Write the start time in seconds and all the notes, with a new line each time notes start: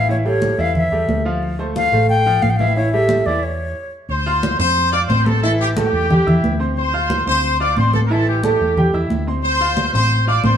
Already playing: A1
0.09 E3 E4 C#5 E5, high conga
0.25 G3 G4 A4 C#5, high conga
0.42 high conga
0.58 E2 E3 E4 E5 F5
0.75 E5, high conga, low conga
0.92 E2 G3 G4 A4, high conga
1.09 D2, high conga
1.25 F3 F4 F5
1.43 high conga
1.59 A3 A4 C5, high conga
1.76 F5, high conga
1.92 A1 A3 A4 C5, high conga
2.09 G5, high conga
2.26 F3 F4 F5, high conga
2.42 A1 F5, high conga
2.50 G5
2.56 E3 E4 F5, high conga
2.60 E5
2.76 E3 E4 C#5 E5, high conga
2.92 G3 G4 A4 E5, high conga
3.09 high conga
3.26 E2 E3 E4 D5 E5
3.43 C#5
4.09 D2 C5 C6, high conga
4.26 F4 F5 F6, high conga
4.43 high conga
4.59 F2 C4 C5 C6, high conga
4.77 high conga
4.93 F4 D5 F5 D6 F6, high conga
5.09 A1 C4 C5 C6, high conga
5.26 A4 A5, high conga
5.43 E3 E4 A4 E5 A5, high conga
5.60 G4 G5, high conga
5.77 A3 G4 A4 G5 A5, high conga
5.93 E2
6.10 G3 G4 G5, high conga, low conga
6.26 E2 E4 E5 E6, high conga, low conga
6.43 D2, high conga
6.59 C4 C5 C6
6.77 C5 C6, high conga
6.93 F4 F5 F6, high conga
7.10 high conga
7.27 D2 C4 C5 C6, high conga
7.43 high conga
7.60 F4 D5 F5 D6 F6, high conga
7.76 A1 C4 C5 C6, high conga
7.93 A4 A5, high conga
8.06 A#4
8.10 E3 E4 A4 E5 A5, high conga
8.27 G4 G5, high conga
8.44 A3 G4 A4 G5 A5, high conga
8.60 E2
8.77 G3 G4 G5, high conga, low conga
8.94 E2 E4 E5 E6, high conga
9.10 D2, high conga
9.27 C4 C5 C6
9.44 C5 C6, high conga
9.60 F4 F5 F6, high conga
9.77 high conga
9.93 A1 C4 C5 C6, high conga
10.10 high conga
10.27 F4 D5 F5 D6 F6, high conga
10.43 A1 C4 C5 C6, high conga